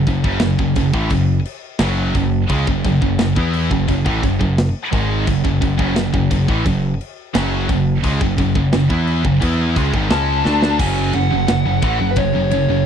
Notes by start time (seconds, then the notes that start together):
0.06 F#1 F#2 C#3, kick, crash
0.24 F#1 F#2 C#3, kick
0.40 F#1 F#2 C#3, snare, crash
0.59 F#1 F#2 C#3, kick
0.75 F#1 F#2 C#3, kick, crash
0.94 A1 A2 E3, kick
1.10 F#1 F#2 C#3, kick, crash
1.45 crash
1.79 F#1 F#2 C#3 F#3, snare, crash
2.14 F#1 F#2 C#3, kick, crash
2.48 C#2 C#3 G#3, kick, crash
2.66 F#1 F#2 C#3, kick
2.84 F#1 F#2 C#3, kick, crash
3.01 F#1 F#2 C#3, kick
3.19 F#1 F#2 C#3, snare, crash
3.36 E2 E3 B3 E4, kick
3.53 crash
3.71 F#1 F#2 C#3, kick
3.88 F#1 F#2 C#3, kick, crash
4.05 A1 A2 E3, kick
4.21 F#1 F#2 C#3, kick, crash
4.39 F#1 F#2 C#3, kick
4.58 snare, crash
4.91 G#1 G#2 D#3 G#3, kick, crash
5.26 F#1 F#2 C#3, kick, crash
5.44 F#1 F#2 C#3, kick
5.61 F#1 F#2 C#3, kick, crash
5.77 F#1 F#2 C#3, kick
5.96 F#1 F#2 C#3, snare, crash
6.13 F#1 F#2 C#3, kick
6.30 F#1 F#2 C#3, kick, crash
6.48 A1 A2 E3, kick
6.65 F#1 F#2 C#3, kick, crash
7.01 crash
7.34 F#1 F#2 C#3 F#3, snare, crash
7.69 F#1 F#2 C#3, kick, crash
8.04 C#2 C#3 G#3, kick, crash
8.20 F#1 F#2 C#3, kick
8.38 F#1 F#2 C#3, kick, crash
8.55 F#1 F#2 C#3, kick
8.73 F#1 F#2 C#3, snare, crash
8.90 E2 E3 B3 E4, kick
9.07 crash
9.24 F#1 F#2 C#3, kick
9.40 E2 E3 B3 E4, kick, crash
9.75 C#2 C#3 G#3, kick, crash
9.92 G#1 G#2 D#3, kick
10.08 C#2 C#3 G#3 C#4 A5, snare, crash
10.44 D2 D3 A3 D4, snare
10.62 snare
10.78 F#1 F#2 C#3 F#3 G#5, kick, crash
11.13 F#1 F#2 C#3 F#5, ride
11.31 F#1 F#2 C#3
11.48 F#1 F#2 C#3, snare, ride
11.65 F#1 F#2 C#3
11.82 A1 A2 E3, kick, ride
11.99 F#1 F#2 C#3
12.11 B4
12.16 F#1 F#2 C#3 C#5, kick, ride
12.35 F#1 F#2 C#3
12.51 F#1 F#2 C#3 C#5, ride
12.68 F#1 F#2 C#3